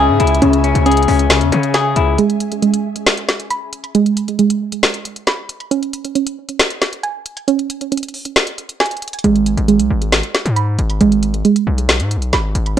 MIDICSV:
0, 0, Header, 1, 6, 480
1, 0, Start_track
1, 0, Key_signature, 5, "minor"
1, 0, Tempo, 441176
1, 456, Time_signature, 4, 2, 24, 8
1, 13920, End_track
2, 0, Start_track
2, 0, Title_t, "Ambient pad"
2, 0, Program_c, 0, 92
2, 0, Note_on_c, 0, 61, 84
2, 0, Note_on_c, 0, 68, 77
2, 0, Note_on_c, 0, 76, 76
2, 0, Note_on_c, 0, 80, 92
2, 2332, Note_off_c, 0, 68, 0
2, 2337, Note_off_c, 0, 61, 0
2, 2337, Note_off_c, 0, 76, 0
2, 2337, Note_off_c, 0, 80, 0
2, 13920, End_track
3, 0, Start_track
3, 0, Title_t, "Clean electric guitar"
3, 0, Program_c, 1, 27
3, 0, Note_on_c, 1, 49, 91
3, 0, Note_on_c, 1, 61, 79
3, 0, Note_on_c, 1, 68, 94
3, 216, Note_on_c, 1, 64, 87
3, 442, Note_off_c, 1, 49, 0
3, 455, Note_on_c, 1, 49, 96
3, 683, Note_off_c, 1, 61, 0
3, 696, Note_on_c, 1, 61, 88
3, 923, Note_off_c, 1, 68, 0
3, 936, Note_on_c, 1, 68, 99
3, 1164, Note_off_c, 1, 61, 0
3, 1177, Note_on_c, 1, 61, 85
3, 1403, Note_off_c, 1, 49, 0
3, 1416, Note_off_c, 1, 64, 0
3, 1416, Note_on_c, 1, 49, 87
3, 1643, Note_off_c, 1, 61, 0
3, 1656, Note_on_c, 1, 61, 90
3, 1882, Note_off_c, 1, 68, 0
3, 1895, Note_on_c, 1, 68, 97
3, 2135, Note_on_c, 1, 64, 93
3, 2375, Note_off_c, 1, 64, 0
3, 2375, Note_off_c, 1, 68, 0
3, 2376, Note_off_c, 1, 49, 0
3, 2376, Note_off_c, 1, 61, 0
3, 13920, End_track
4, 0, Start_track
4, 0, Title_t, "Synth pluck"
4, 0, Program_c, 2, 84
4, 0, Note_on_c, 2, 61, 76
4, 0, Note_on_c, 2, 80, 100
4, 442, Note_off_c, 2, 61, 0
4, 455, Note_on_c, 2, 61, 98
4, 922, Note_off_c, 2, 61, 0
4, 935, Note_on_c, 2, 61, 72
4, 1883, Note_off_c, 2, 80, 0
4, 1896, Note_on_c, 2, 80, 109
4, 2376, Note_off_c, 2, 61, 0
4, 2376, Note_off_c, 2, 80, 0
4, 2377, Note_on_c, 2, 56, 96
4, 2840, Note_off_c, 2, 56, 0
4, 2854, Note_on_c, 2, 56, 78
4, 3814, Note_on_c, 2, 83, 103
4, 4282, Note_off_c, 2, 56, 0
4, 4295, Note_on_c, 2, 56, 89
4, 4763, Note_off_c, 2, 56, 0
4, 4776, Note_on_c, 2, 56, 71
4, 5720, Note_off_c, 2, 83, 0
4, 5734, Note_on_c, 2, 83, 109
4, 6213, Note_on_c, 2, 61, 98
4, 6215, Note_off_c, 2, 83, 0
4, 6216, Note_off_c, 2, 56, 0
4, 6681, Note_off_c, 2, 61, 0
4, 6694, Note_on_c, 2, 61, 73
4, 7652, Note_on_c, 2, 80, 98
4, 8121, Note_off_c, 2, 61, 0
4, 8134, Note_on_c, 2, 61, 92
4, 8601, Note_off_c, 2, 61, 0
4, 8614, Note_on_c, 2, 61, 72
4, 9563, Note_off_c, 2, 80, 0
4, 9576, Note_on_c, 2, 80, 106
4, 10055, Note_off_c, 2, 61, 0
4, 10056, Note_off_c, 2, 80, 0
4, 10056, Note_on_c, 2, 56, 94
4, 10521, Note_off_c, 2, 56, 0
4, 10534, Note_on_c, 2, 56, 74
4, 11493, Note_on_c, 2, 83, 104
4, 11962, Note_off_c, 2, 56, 0
4, 11975, Note_on_c, 2, 56, 90
4, 12442, Note_off_c, 2, 56, 0
4, 12455, Note_on_c, 2, 56, 72
4, 13402, Note_off_c, 2, 83, 0
4, 13415, Note_on_c, 2, 83, 107
4, 13896, Note_off_c, 2, 56, 0
4, 13896, Note_off_c, 2, 83, 0
4, 13920, End_track
5, 0, Start_track
5, 0, Title_t, "808-style bass"
5, 0, Program_c, 3, 38
5, 0, Note_on_c, 3, 37, 109
5, 96, Note_on_c, 3, 44, 105
5, 113, Note_off_c, 3, 37, 0
5, 210, Note_off_c, 3, 44, 0
5, 217, Note_on_c, 3, 37, 110
5, 447, Note_off_c, 3, 37, 0
5, 456, Note_on_c, 3, 37, 110
5, 802, Note_off_c, 3, 37, 0
5, 816, Note_on_c, 3, 37, 109
5, 1162, Note_off_c, 3, 37, 0
5, 1175, Note_on_c, 3, 37, 108
5, 1536, Note_on_c, 3, 40, 99
5, 1552, Note_off_c, 3, 37, 0
5, 1650, Note_off_c, 3, 40, 0
5, 1657, Note_on_c, 3, 49, 103
5, 2117, Note_off_c, 3, 49, 0
5, 2136, Note_on_c, 3, 37, 107
5, 2366, Note_off_c, 3, 37, 0
5, 10055, Note_on_c, 3, 32, 110
5, 10401, Note_off_c, 3, 32, 0
5, 10416, Note_on_c, 3, 32, 113
5, 10655, Note_on_c, 3, 35, 100
5, 10672, Note_off_c, 3, 32, 0
5, 10770, Note_off_c, 3, 35, 0
5, 10776, Note_on_c, 3, 32, 106
5, 11121, Note_off_c, 3, 32, 0
5, 11375, Note_on_c, 3, 44, 103
5, 11721, Note_off_c, 3, 44, 0
5, 11735, Note_on_c, 3, 32, 104
5, 11966, Note_off_c, 3, 32, 0
5, 11976, Note_on_c, 3, 32, 115
5, 12437, Note_off_c, 3, 32, 0
5, 12696, Note_on_c, 3, 35, 108
5, 13055, Note_on_c, 3, 44, 97
5, 13072, Note_off_c, 3, 35, 0
5, 13236, Note_on_c, 3, 35, 98
5, 13252, Note_off_c, 3, 44, 0
5, 13407, Note_off_c, 3, 35, 0
5, 13415, Note_on_c, 3, 32, 108
5, 13646, Note_off_c, 3, 32, 0
5, 13654, Note_on_c, 3, 32, 104
5, 13886, Note_off_c, 3, 32, 0
5, 13920, End_track
6, 0, Start_track
6, 0, Title_t, "Drums"
6, 216, Note_on_c, 9, 42, 66
6, 296, Note_off_c, 9, 42, 0
6, 296, Note_on_c, 9, 42, 66
6, 376, Note_off_c, 9, 42, 0
6, 376, Note_on_c, 9, 42, 69
6, 457, Note_off_c, 9, 42, 0
6, 457, Note_on_c, 9, 42, 89
6, 565, Note_off_c, 9, 42, 0
6, 580, Note_on_c, 9, 42, 77
6, 688, Note_off_c, 9, 42, 0
6, 696, Note_on_c, 9, 42, 61
6, 805, Note_off_c, 9, 42, 0
6, 818, Note_on_c, 9, 42, 60
6, 927, Note_off_c, 9, 42, 0
6, 936, Note_on_c, 9, 42, 78
6, 996, Note_off_c, 9, 42, 0
6, 996, Note_on_c, 9, 42, 66
6, 1056, Note_off_c, 9, 42, 0
6, 1056, Note_on_c, 9, 42, 57
6, 1116, Note_off_c, 9, 42, 0
6, 1116, Note_on_c, 9, 42, 46
6, 1177, Note_on_c, 9, 46, 92
6, 1225, Note_off_c, 9, 42, 0
6, 1285, Note_off_c, 9, 46, 0
6, 1298, Note_on_c, 9, 42, 63
6, 1407, Note_off_c, 9, 42, 0
6, 1415, Note_on_c, 9, 38, 127
6, 1416, Note_on_c, 9, 42, 92
6, 1523, Note_off_c, 9, 38, 0
6, 1525, Note_off_c, 9, 42, 0
6, 1534, Note_on_c, 9, 42, 63
6, 1643, Note_off_c, 9, 42, 0
6, 1657, Note_on_c, 9, 42, 72
6, 1766, Note_off_c, 9, 42, 0
6, 1776, Note_on_c, 9, 42, 54
6, 1885, Note_off_c, 9, 42, 0
6, 1894, Note_on_c, 9, 42, 68
6, 1896, Note_on_c, 9, 38, 97
6, 2002, Note_off_c, 9, 42, 0
6, 2004, Note_off_c, 9, 38, 0
6, 2133, Note_on_c, 9, 42, 79
6, 2242, Note_off_c, 9, 42, 0
6, 2376, Note_on_c, 9, 42, 86
6, 2485, Note_off_c, 9, 42, 0
6, 2499, Note_on_c, 9, 42, 53
6, 2608, Note_off_c, 9, 42, 0
6, 2615, Note_on_c, 9, 42, 86
6, 2724, Note_off_c, 9, 42, 0
6, 2738, Note_on_c, 9, 42, 56
6, 2847, Note_off_c, 9, 42, 0
6, 2856, Note_on_c, 9, 42, 73
6, 2964, Note_off_c, 9, 42, 0
6, 2977, Note_on_c, 9, 42, 86
6, 3086, Note_off_c, 9, 42, 0
6, 3218, Note_on_c, 9, 42, 63
6, 3326, Note_off_c, 9, 42, 0
6, 3335, Note_on_c, 9, 38, 119
6, 3337, Note_on_c, 9, 42, 87
6, 3444, Note_off_c, 9, 38, 0
6, 3445, Note_off_c, 9, 42, 0
6, 3454, Note_on_c, 9, 42, 58
6, 3563, Note_off_c, 9, 42, 0
6, 3575, Note_on_c, 9, 38, 90
6, 3576, Note_on_c, 9, 42, 68
6, 3684, Note_off_c, 9, 38, 0
6, 3685, Note_off_c, 9, 42, 0
6, 3696, Note_on_c, 9, 42, 53
6, 3805, Note_off_c, 9, 42, 0
6, 3813, Note_on_c, 9, 42, 68
6, 3922, Note_off_c, 9, 42, 0
6, 4055, Note_on_c, 9, 42, 81
6, 4164, Note_off_c, 9, 42, 0
6, 4175, Note_on_c, 9, 42, 47
6, 4284, Note_off_c, 9, 42, 0
6, 4296, Note_on_c, 9, 42, 84
6, 4405, Note_off_c, 9, 42, 0
6, 4419, Note_on_c, 9, 42, 53
6, 4528, Note_off_c, 9, 42, 0
6, 4535, Note_on_c, 9, 42, 86
6, 4644, Note_off_c, 9, 42, 0
6, 4658, Note_on_c, 9, 42, 57
6, 4767, Note_off_c, 9, 42, 0
6, 4776, Note_on_c, 9, 42, 74
6, 4885, Note_off_c, 9, 42, 0
6, 4897, Note_on_c, 9, 42, 85
6, 5006, Note_off_c, 9, 42, 0
6, 5138, Note_on_c, 9, 42, 62
6, 5247, Note_off_c, 9, 42, 0
6, 5255, Note_on_c, 9, 38, 120
6, 5257, Note_on_c, 9, 42, 87
6, 5364, Note_off_c, 9, 38, 0
6, 5366, Note_off_c, 9, 42, 0
6, 5374, Note_on_c, 9, 42, 62
6, 5483, Note_off_c, 9, 42, 0
6, 5497, Note_on_c, 9, 42, 70
6, 5605, Note_off_c, 9, 42, 0
6, 5616, Note_on_c, 9, 42, 53
6, 5725, Note_off_c, 9, 42, 0
6, 5734, Note_on_c, 9, 42, 67
6, 5736, Note_on_c, 9, 38, 95
6, 5842, Note_off_c, 9, 42, 0
6, 5844, Note_off_c, 9, 38, 0
6, 5976, Note_on_c, 9, 42, 81
6, 6085, Note_off_c, 9, 42, 0
6, 6096, Note_on_c, 9, 42, 45
6, 6205, Note_off_c, 9, 42, 0
6, 6216, Note_on_c, 9, 42, 86
6, 6325, Note_off_c, 9, 42, 0
6, 6339, Note_on_c, 9, 42, 53
6, 6448, Note_off_c, 9, 42, 0
6, 6456, Note_on_c, 9, 42, 85
6, 6565, Note_off_c, 9, 42, 0
6, 6578, Note_on_c, 9, 42, 57
6, 6687, Note_off_c, 9, 42, 0
6, 6696, Note_on_c, 9, 42, 70
6, 6805, Note_off_c, 9, 42, 0
6, 6817, Note_on_c, 9, 42, 85
6, 6926, Note_off_c, 9, 42, 0
6, 7058, Note_on_c, 9, 42, 63
6, 7167, Note_off_c, 9, 42, 0
6, 7175, Note_on_c, 9, 38, 117
6, 7177, Note_on_c, 9, 42, 89
6, 7284, Note_off_c, 9, 38, 0
6, 7285, Note_off_c, 9, 42, 0
6, 7294, Note_on_c, 9, 42, 59
6, 7403, Note_off_c, 9, 42, 0
6, 7416, Note_on_c, 9, 38, 95
6, 7417, Note_on_c, 9, 42, 69
6, 7525, Note_off_c, 9, 38, 0
6, 7526, Note_off_c, 9, 42, 0
6, 7537, Note_on_c, 9, 42, 54
6, 7646, Note_off_c, 9, 42, 0
6, 7654, Note_on_c, 9, 42, 69
6, 7763, Note_off_c, 9, 42, 0
6, 7896, Note_on_c, 9, 42, 79
6, 8005, Note_off_c, 9, 42, 0
6, 8016, Note_on_c, 9, 42, 46
6, 8125, Note_off_c, 9, 42, 0
6, 8137, Note_on_c, 9, 42, 85
6, 8246, Note_off_c, 9, 42, 0
6, 8259, Note_on_c, 9, 42, 54
6, 8368, Note_off_c, 9, 42, 0
6, 8376, Note_on_c, 9, 42, 84
6, 8485, Note_off_c, 9, 42, 0
6, 8498, Note_on_c, 9, 42, 58
6, 8607, Note_off_c, 9, 42, 0
6, 8616, Note_on_c, 9, 42, 74
6, 8676, Note_off_c, 9, 42, 0
6, 8676, Note_on_c, 9, 42, 65
6, 8736, Note_off_c, 9, 42, 0
6, 8736, Note_on_c, 9, 42, 56
6, 8796, Note_off_c, 9, 42, 0
6, 8796, Note_on_c, 9, 42, 43
6, 8857, Note_on_c, 9, 46, 88
6, 8905, Note_off_c, 9, 42, 0
6, 8966, Note_off_c, 9, 46, 0
6, 8979, Note_on_c, 9, 42, 64
6, 9087, Note_off_c, 9, 42, 0
6, 9096, Note_on_c, 9, 38, 118
6, 9098, Note_on_c, 9, 42, 85
6, 9205, Note_off_c, 9, 38, 0
6, 9206, Note_off_c, 9, 42, 0
6, 9214, Note_on_c, 9, 42, 61
6, 9323, Note_off_c, 9, 42, 0
6, 9337, Note_on_c, 9, 42, 67
6, 9446, Note_off_c, 9, 42, 0
6, 9456, Note_on_c, 9, 42, 53
6, 9565, Note_off_c, 9, 42, 0
6, 9576, Note_on_c, 9, 38, 97
6, 9576, Note_on_c, 9, 42, 69
6, 9636, Note_off_c, 9, 42, 0
6, 9636, Note_on_c, 9, 42, 61
6, 9685, Note_off_c, 9, 38, 0
6, 9696, Note_off_c, 9, 42, 0
6, 9696, Note_on_c, 9, 42, 51
6, 9756, Note_off_c, 9, 42, 0
6, 9756, Note_on_c, 9, 42, 41
6, 9816, Note_off_c, 9, 42, 0
6, 9816, Note_on_c, 9, 42, 67
6, 9876, Note_off_c, 9, 42, 0
6, 9876, Note_on_c, 9, 42, 68
6, 9936, Note_off_c, 9, 42, 0
6, 9936, Note_on_c, 9, 42, 69
6, 9995, Note_off_c, 9, 42, 0
6, 9995, Note_on_c, 9, 42, 65
6, 10056, Note_off_c, 9, 42, 0
6, 10056, Note_on_c, 9, 42, 89
6, 10165, Note_off_c, 9, 42, 0
6, 10179, Note_on_c, 9, 42, 52
6, 10288, Note_off_c, 9, 42, 0
6, 10295, Note_on_c, 9, 42, 84
6, 10404, Note_off_c, 9, 42, 0
6, 10418, Note_on_c, 9, 42, 59
6, 10527, Note_off_c, 9, 42, 0
6, 10536, Note_on_c, 9, 42, 73
6, 10645, Note_off_c, 9, 42, 0
6, 10658, Note_on_c, 9, 42, 86
6, 10766, Note_off_c, 9, 42, 0
6, 10898, Note_on_c, 9, 42, 62
6, 11007, Note_off_c, 9, 42, 0
6, 11015, Note_on_c, 9, 38, 116
6, 11017, Note_on_c, 9, 42, 86
6, 11124, Note_off_c, 9, 38, 0
6, 11125, Note_off_c, 9, 42, 0
6, 11134, Note_on_c, 9, 42, 60
6, 11243, Note_off_c, 9, 42, 0
6, 11256, Note_on_c, 9, 38, 93
6, 11257, Note_on_c, 9, 42, 69
6, 11365, Note_off_c, 9, 38, 0
6, 11366, Note_off_c, 9, 42, 0
6, 11376, Note_on_c, 9, 42, 53
6, 11485, Note_off_c, 9, 42, 0
6, 11494, Note_on_c, 9, 42, 67
6, 11602, Note_off_c, 9, 42, 0
6, 11735, Note_on_c, 9, 42, 80
6, 11844, Note_off_c, 9, 42, 0
6, 11855, Note_on_c, 9, 42, 48
6, 11964, Note_off_c, 9, 42, 0
6, 11975, Note_on_c, 9, 42, 85
6, 12084, Note_off_c, 9, 42, 0
6, 12099, Note_on_c, 9, 42, 54
6, 12208, Note_off_c, 9, 42, 0
6, 12215, Note_on_c, 9, 42, 84
6, 12324, Note_off_c, 9, 42, 0
6, 12338, Note_on_c, 9, 42, 58
6, 12447, Note_off_c, 9, 42, 0
6, 12456, Note_on_c, 9, 42, 73
6, 12565, Note_off_c, 9, 42, 0
6, 12577, Note_on_c, 9, 42, 86
6, 12686, Note_off_c, 9, 42, 0
6, 12818, Note_on_c, 9, 42, 64
6, 12927, Note_off_c, 9, 42, 0
6, 12935, Note_on_c, 9, 38, 121
6, 12937, Note_on_c, 9, 42, 86
6, 13044, Note_off_c, 9, 38, 0
6, 13045, Note_off_c, 9, 42, 0
6, 13054, Note_on_c, 9, 42, 59
6, 13162, Note_off_c, 9, 42, 0
6, 13176, Note_on_c, 9, 42, 68
6, 13285, Note_off_c, 9, 42, 0
6, 13296, Note_on_c, 9, 42, 56
6, 13405, Note_off_c, 9, 42, 0
6, 13413, Note_on_c, 9, 42, 68
6, 13415, Note_on_c, 9, 38, 95
6, 13522, Note_off_c, 9, 42, 0
6, 13524, Note_off_c, 9, 38, 0
6, 13655, Note_on_c, 9, 42, 79
6, 13764, Note_off_c, 9, 42, 0
6, 13776, Note_on_c, 9, 42, 47
6, 13884, Note_off_c, 9, 42, 0
6, 13920, End_track
0, 0, End_of_file